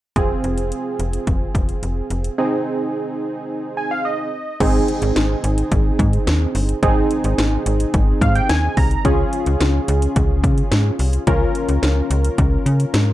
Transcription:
0.16 F1 C4 F4 G#4, kick, closed hi-hat
0.44 F1, closed hi-hat
0.58 closed hi-hat
0.72 closed hi-hat
0.99 F1, closed hi-hat
1.13 closed hi-hat
1.27 F1, kick, closed hi-hat
1.55 F1, kick, closed hi-hat
1.69 closed hi-hat
1.83 F1, closed hi-hat
2.10 F1, closed hi-hat
2.24 closed hi-hat
2.38 C4 D#4 G#4
3.77 G#5
3.91 F5
4.05 D#5
4.60 G#1 C4 D#4 G#4, kick, closed hi-hat, crash
4.88 closed hi-hat
5.02 G#1, closed hi-hat
5.16 G#1, snare, closed hi-hat
5.44 G#1, closed hi-hat
5.58 closed hi-hat
5.72 G#1, kick, closed hi-hat
5.99 G#2, kick, closed hi-hat
6.13 closed hi-hat
6.27 D#2, snare, closed hi-hat
6.55 G1, open hi-hat
6.69 closed hi-hat
6.83 G#1 C4 D#4 G#4, kick, closed hi-hat
7.11 closed hi-hat
7.24 G#1, closed hi-hat
7.38 G#1, snare, closed hi-hat
7.66 G#1, closed hi-hat
7.80 closed hi-hat
7.94 G#1, kick, closed hi-hat
8.21 G#2 F5, kick, closed hi-hat
8.35 G5, closed hi-hat
8.49 D#2 G#5, snare, closed hi-hat
8.77 C2 A#5, kick, open hi-hat
8.91 closed hi-hat
9.05 C#2 C#4 F4 G#4, kick, closed hi-hat
9.33 closed hi-hat
9.46 C#2, closed hi-hat
9.61 C#2, snare, closed hi-hat
9.88 C#2, closed hi-hat
10.02 closed hi-hat
10.16 C#2, kick, closed hi-hat
10.44 C#3, kick, closed hi-hat
10.58 closed hi-hat
10.72 G#2, snare, closed hi-hat
10.99 C2, open hi-hat
11.13 closed hi-hat
11.27 C#2 C#4 F4 A#4, kick, closed hi-hat
11.55 closed hi-hat
11.69 C#2, closed hi-hat
11.83 C#2, snare, closed hi-hat
12.10 C#2, closed hi-hat
12.24 closed hi-hat
12.38 C#2, kick, closed hi-hat
12.66 C#3, closed hi-hat
12.80 closed hi-hat
12.94 G#2, snare, closed hi-hat

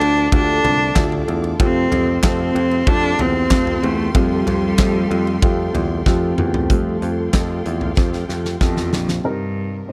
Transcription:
Already playing: A2 A3 D4 F4 A4 C5 D5 F5 D6
0.00 D2 D4 F4 A4, ride
0.17 ride
0.31 D2 A3 D4 F4 G4 A4, kick, ride
0.63 C2 D4 F4 A4, floor tom, ride
0.96 D2 D3 A3 D4 F4 G4 A4, kick, snare, clap, ride
1.03 A4
1.12 floor tom
1.27 E2 D4 F4 A4, ride
1.44 ride
1.59 F2 C3 F3 A3 C4 F4 G4 A4 F5 G5 C6, kick, ride
1.90 F2 A3 C4 F4 G4, floor tom, ride
2.23 F2 F3 A3 C4 F4 G4 A4, kick, snare, clap, ride
2.54 F2 C4 F4 G4, ride
2.71 ride
2.87 F2 A3 C4 D4 F4 G4 A4, kick, ride
3.18 E2 C4 F4 G4, floor tom, ride
3.50 F2 F3 A3 C4 F4 G4 A4, kick, snare, clap, ride
3.67 floor tom
3.82 E2 A3 C4 F4 G4, ride
4.14 F2 C3 F3 G3 A3 C4 F4 G4, kick, ride
4.46 F2 A3 C4 F4 G4, floor tom, ride
4.78 F2 F3 A3 C4 F4 G4, kick, snare, clap, ride
5.10 F2 C4 F4 G4, ride
5.27 ride
5.42 F2 A3 C4 F4 G4, kick, ride
5.74 E2 C4 F4 G4, floor tom, ride
6.06 F2 F3 A3 C4 F4 G4, kick, snare
6.37 E2 C4 F4 G4, mid tom
6.54 floor tom
6.69 F2 F3 G3 A3 C4 F4 G4 A4 F5 G5 C6, kick, closed hi-hat
7.01 F2 C4 F4 G4, closed hi-hat
7.33 F2 F3 A3 C4 F4 G4, kick, snare, clap, closed hi-hat
7.65 E2 C4 F4 G4, closed hi-hat
7.81 floor tom
7.97 F2 A3 C4 F4 G4, kick, snare
8.13 snare
8.28 F2 C4 F4 G4, snare
8.45 snare
8.61 E2 F2 F3 A3 C4 F4 G4, kick, snare
8.77 snare
8.92 A#1 F2 C4 F4 G4, snare
9.08 snare
9.24 C2 G2 C3 G3 C4 D#4 A#4
9.88 A2 C4 D#4 C5

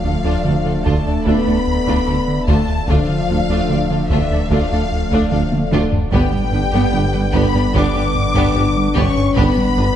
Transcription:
Already playing: D1 D3 F3 A3 D4 A4 D5 F5
0.04 D2 A3 D4 F4 A4
0.24 D2 A3 D4 F4
0.44 D2 D3 A3 D4 A4 D5
0.64 D2 D3 A3 D4 F4 A4
0.84 D2 A3 D4 F4 A5, taiko
1.05 D2 A3 D4 A4 D5
1.24 D2 A3 B3 D4 F4 B5, taiko
1.45 D2 A3 D4 A4 D5
1.67 D2
1.86 D2 A3 D4 F4, taiko
2.06 D2 A3 D4 A4 D5
2.28 D3
2.46 D2 A3 D4 F4 A5, taiko
2.69 D2
2.88 D1 D2 D3 F3 A3 D4 F4 A4 D5 F5, taiko
3.09 D3
3.29 D2 A3 D4 F4 A4
3.49 D2 A3 D4 F4
3.69 D2 D3 A3 D4 A4 D5
3.89 D2 D3 A3 D4 F4 A4
4.10 D2 E3 A3 D4 F4 E5, taiko
4.30 D2 A3 D4 A4 D5
4.49 D2 F3 A3 D4 F4 F5, taiko
4.72 D2 A3 D4 A4 D5
4.92 D2
5.11 D2 A3 D4 F4, taiko
5.31 D2 F3 A3 D4 A4 D5 F5, taiko mid
5.52 D3, taiko high
5.72 D2 A3 D4 F4, taiko mid
5.92 D2, taiko low
6.12 G1 G2 D3 G3 B3 D4 G4 B4 G5, taiko
6.32 G3, taiko low-mid
6.52 G1 G2 B3 D4 B4
6.71 G2 B3 D4 G4
6.92 G1 G2 G3 B3 D4 G4 D5
7.12 G2 G3 B3 D4 B4
7.33 G1 G2 B3 D4 G4 B5, taiko
7.54 G2 B3 D4 G4 D5
7.74 G1 G2 B3 D4 G4 D6, taiko
7.95 G2 B3 D4 G4 D5
8.15 G2, taiko low-mid
8.35 G2 B3 D4 G4, taiko
8.54 G1 G2 B3 D4 G4 D5, taiko low-mid
8.77 G3
8.95 G1 G2 B3 C#4 D4 G4 C#6, taiko
9.17 G2
9.35 G1 G2 D3 G3 B3 D4 G4 B4 D5 B5, taiko
9.57 G3, taiko low-mid
9.76 G1 G2 B3 D4 B4

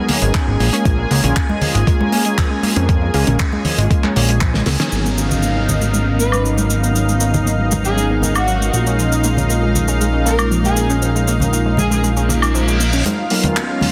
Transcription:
Already playing: F#3 B3 C#4 D#4 G#4 A#4 G#5
0.09 A#3, open hi-hat, low conga
0.22 G#1 F#3 G#3 B3 C#4 D#4 A#4, closed hi-hat
0.34 F#3, kick, clap, closed hi-hat
0.47 G#1 G#3
0.60 A#1 A#3, open hi-hat, high conga
0.72 G#3 A#3 C#4 F4 A#4, closed hi-hat
0.85 A#1 F3, kick, closed hi-hat
0.98 G#3
1.10 C#2 G#3 A#3 C#4 F4 A#4, open hi-hat
1.24 A#1 C#4, closed hi-hat, low conga
1.36 A#3, kick, clap, closed hi-hat
1.49 G#3 A#3 C#4 F4 D#5, high conga
1.61 F3, open hi-hat, low conga
1.75 G#1 G#3, closed hi-hat
1.86 G#3 A#3 C#4 F4 A#4, kick, closed hi-hat
2.00 C#4, high conga
2.12 A#3, open hi-hat
2.25 G#3 A#3 C#4 F4 A#4, closed hi-hat
2.38 F3, kick, clap, closed hi-hat
2.51 G#3
2.63 A#3, open hi-hat, high conga
2.76 F2 G#3 A#3 C#4 F4 A#4, closed hi-hat
2.89 F3, kick, closed hi-hat
3.02 G#3
3.13 C#2 G#3 A#3 C#4 F4 A#4, open hi-hat
3.27 A#1 C#4, closed hi-hat, low conga
3.39 A#3, kick, clap, closed hi-hat
3.52 G#3 A#3 C#4 F4 D#5, high conga
3.65 F3, open hi-hat, low conga
3.78 G#1 G#3, closed hi-hat
3.90 G#3 A#3 C#4 F4 A#4, kick, closed hi-hat
4.04 C#4, clap, high conga
4.15 A#1 G#3 A#3 C#4 F4 C#5, open hi-hat, low conga
4.29 G#3, closed hi-hat
4.41 F3, kick, clap, closed hi-hat
4.54 G#3 A#3 C#4 F4 A#4, snare
4.66 C#2 A#3, snare, open hi-hat, high conga
4.79 F#3 B3 C#4 D#4 A#4, snare, closed hi-hat
4.91 G#1 F#3 B3 C#4 D#4 A#4 F5, downlifter, cabasa
5.05 G#3, cabasa
5.18 A#3, cabasa
5.31 B3, low conga, cabasa
5.43 A#3, cabasa
5.56 G#3
5.68 F#3, low conga, cabasa
5.81 G#3, cabasa
5.94 G#3, cabasa
6.07 B3
6.19 A#3 B4, cabasa
6.32 G#3, cabasa, high woodblock
6.45 F#3, cabasa
6.58 G#3, high conga, cabasa
6.70 A#3, cabasa
6.83 B3, cabasa
6.96 F#3, cabasa
7.08 G#3, cabasa
7.20 A#3, cabasa
7.34 B3, low conga, cabasa
7.46 A#3, cabasa
7.59 G#3
7.71 F#3, high conga, low conga, cabasa
7.85 G#3 G#4, cabasa
7.97 G#3, cabasa
8.10 B3
8.22 A#3, high conga, low conga, cabasa
8.35 G#3 F#4, cabasa, high woodblock
8.48 F#3, cabasa
8.61 G#3, cabasa
8.73 A#1 G#3 A#3 C#4 F4 A#4, cabasa
8.87 C#4, cabasa
8.99 F3, cabasa
9.12 G#3, cabasa
9.24 A#3, cabasa
9.37 C#4, low conga, cabasa
9.50 A#3, cabasa
9.63 G#3
9.75 F3, low conga, cabasa
9.88 G#3, cabasa
10.01 G#3, cabasa
10.13 C#4
10.26 A#3 A#4, cabasa
10.39 G#3, cabasa, high woodblock
10.51 F3, cabasa
10.64 G#3 G#4, high conga, cabasa
10.77 A#3, cabasa
10.90 C#4, cabasa
11.02 F3, cabasa
11.15 G#3, cabasa
11.28 A#3, cabasa
11.40 C#4, low conga, cabasa
11.53 A#3, cabasa
11.66 G#3
11.77 F3 G#4, high conga, low conga, cabasa
11.91 G#3 G#4, cabasa
12.04 G#3, reverse cymbal, cabasa
12.17 C#4, cabasa
12.29 A#3, high conga, low conga, cabasa
12.42 G#3, cabasa, high woodblock
12.55 F3, cabasa
12.68 G#3, cabasa
12.80 A#3, cabasa
12.93 C#4, cabasa
13.05 G#1 F#3 F4 F5, closed hi-hat, riser, high conga
13.19 G#3
13.30 B1 F#3 A#3 B3 C#4 D#4 A#4, open hi-hat
13.44 G#1 B3, closed hi-hat, high conga, low conga
13.56 A#3, clap, closed hi-hat
13.69 F#3 G#3 B3 C#4 D#4 C#5
13.81 F#3, open hi-hat, high conga, low conga

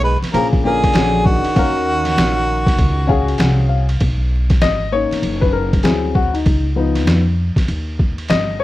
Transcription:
Already playing: B1 F#4
0.04 G#3 B4
0.22 muted upright bass stroke, snare, ride
0.33 A#1 F3 A#3 C#4 F4 G#4 A#4, ride
0.53 kick
0.64 D3 A#3 C#4 F4 G#4 A#4
0.83 kick, ride
0.93 A#1 C#4 D4 F#4 G#4, snare, hi-hat pedal, ride
1.25 D#3 F#4, kick
1.44 muted upright bass stroke, ride
1.55 D#2 C#4 F#4 A#4 F5, kick, ride
2.05 snare, ride
2.17 A#1, snare, hi-hat pedal, ride
2.66 kick, snare, ride
2.78 C#2, kick, ride
3.07 C#4 F#4 G#4 F5 G#5, kick
3.28 ride
3.38 C2 F#5, snare, hi-hat pedal, ride
3.69 F5
3.89 ride
4.00 B1, kick, ride
4.50 kick, snare, ride
4.62 G#1 D#5, snare, hi-hat pedal, ride
4.92 A#3 C#4 D#4 C#5
5.11 muted upright bass stroke, snare, ride
5.22 F#1, ride
5.41 B4, kick
5.53 A#4
5.73 kick, ride
5.83 D2 F#3 C4 E4 G#4, snare, hi-hat pedal, ride
6.15 F#4, kick
6.34 D#4, ride
6.46 C#2, kick, ride
6.76 F3 B3 D#4
6.95 snare, ride
7.07 F2, snare, hi-hat pedal, ride
7.56 muted upright bass stroke, kick, snare, ride
7.68 D#2, ride
7.99 kick
8.18 ride
8.28 G1 D#5, snare, hi-hat pedal, ride
8.60 C#5

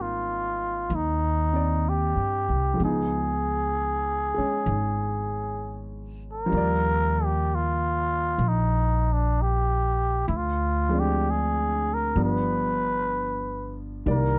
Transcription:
Already playing: G#1 G3 A#3 C4 D#4
0.02 F4
0.90 D#2
0.95 D#4
1.53 C4 D5
1.89 G4
2.16 G2
2.48 C2
2.74 F3 G#3
2.80 C#2 B3
2.84 D#4 G#4
4.34 G#3 C#4, muted upright bass stroke
4.66 G#1
6.32 A#4
6.46 F3 G3
6.52 D#2 A#3
6.57 D5
7.25 G4
7.55 F4
8.38 A#1
8.48 D#4
9.13 D4
9.41 G4
10.28 D2 E4
10.36 F4
10.89 F3 G#3 C4
10.94 D4
10.99 G4
11.30 G#4
11.94 A#4
12.16 G1 F3 G3 B3 D4
12.24 B4
14.06 C2 D#3 G3 A#3 D5
14.11 A#4

